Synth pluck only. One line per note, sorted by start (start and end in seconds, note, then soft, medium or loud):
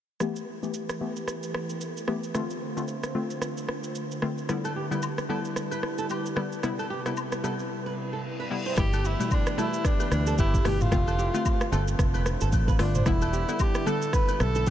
0.20 0.41 E3 medium
0.20 0.41 A3 medium
0.20 0.41 B3 medium
0.20 0.41 G4 loud
0.63 0.98 E3 medium
0.63 0.98 A3 medium
0.63 0.98 B3 medium
0.63 0.98 G4 medium
1.01 1.26 E3 medium
1.01 1.26 A3 medium
1.01 1.26 B3 medium
1.01 1.26 G4 medium
2.08 2.33 E3 medium
2.08 2.33 A3 medium
2.08 2.33 B3 medium
2.08 2.33 G4 medium
2.34 2.55 D3 medium
2.34 2.55 A3 medium
2.34 2.55 C4 medium
2.34 2.55 F4 loud
2.77 3.12 D3 medium
2.77 3.12 A3 medium
2.77 3.12 C4 medium
2.77 3.13 F4 medium
3.15 3.40 D3 medium
3.15 3.40 A3 medium
3.15 3.40 C4 medium
3.15 3.40 F4 medium
4.22 4.47 D3 medium
4.22 4.47 A3 medium
4.22 4.47 C4 medium
4.22 4.47 F4 medium
4.49 4.69 D3 medium
4.49 4.69 G3 medium
4.49 4.69 B3 medium
4.49 4.70 E4 loud
4.91 5.26 D3 medium
4.91 5.27 G3 medium
4.91 5.27 B3 medium
4.91 5.27 E4 medium
5.29 5.54 D3 medium
5.29 5.54 G3 medium
5.29 5.54 B3 medium
5.29 5.54 E4 medium
6.36 6.61 D3 medium
6.36 6.61 G3 medium
6.36 6.62 B3 medium
6.36 6.62 E4 medium
6.63 6.84 C3 medium
6.63 6.84 G3 medium
6.63 6.84 B3 medium
6.63 6.84 E4 loud
7.05 7.41 C3 medium
7.05 7.41 G3 medium
7.05 7.41 B3 medium
7.05 7.41 E4 medium
7.44 7.69 C3 medium
7.44 7.69 G3 medium
7.44 7.69 B3 medium
7.44 7.69 E4 medium
8.50 8.76 C3 medium
8.50 8.76 G3 medium
8.50 8.76 B3 medium
8.50 8.76 E4 medium
8.77 8.98 B2 loud
8.77 8.98 G3 medium
8.77 8.98 A3 medium
8.77 8.98 E4 loud
9.19 9.55 B2 medium
9.19 9.55 G3 medium
9.19 9.55 A3 medium
9.19 9.55 E4 medium
9.57 9.83 B2 medium
9.57 9.83 G3 medium
9.57 9.83 A3 medium
9.57 9.83 E4 medium
10.65 10.90 B2 medium
10.65 10.90 G3 medium
10.65 10.90 A3 medium
10.65 10.90 E4 medium
10.91 11.12 D3 loud
10.91 11.12 A3 medium
10.91 11.12 C4 medium
10.91 11.12 F4 loud
11.34 11.69 D3 medium
11.34 11.70 A3 medium
11.34 11.70 C4 medium
11.34 11.70 F4 medium
11.72 11.97 D3 medium
11.72 11.97 A3 medium
11.72 11.97 C4 medium
11.72 11.97 F4 medium
12.79 13.04 D3 medium
12.79 13.04 A3 medium
12.79 13.04 C4 medium
12.79 13.04 F4 medium
13.06 13.26 D3 loud
13.06 13.27 G3 medium
13.06 13.27 B3 medium
13.06 13.27 E4 loud
13.48 13.84 D3 medium
13.48 13.84 G3 medium
13.48 13.84 B3 medium
13.48 13.84 E4 medium
13.87 14.12 D3 medium
13.87 14.12 G3 medium
13.87 14.12 B3 medium
13.87 14.12 E4 medium